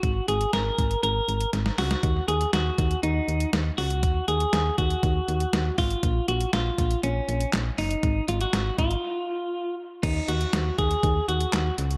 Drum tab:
CC |----------------|----------------|----------------|----------------|
HH |x-xxx-xxx-xxx-ox|x-xxx-xxx-xxx-ox|x-xxx-xxx-xxx-ox|x-xxx-xxx-xxx-ox|
CP |----------------|----------------|----------------|------------x---|
SD |----o-------oooo|----o-------o---|----o-------o---|----o-------o---|
BD |o-----o---------|o-----o---------|o-----o-o-----o-|o-----o---------|

CC |----------------|x---------------|
HH |x-xxx-xx--------|x-xxx-xxx-xxx-xx|
CP |----------------|------------x---|
SD |----o-----------|----o-------o---|
BD |o-----o---------|o-----o-o-------|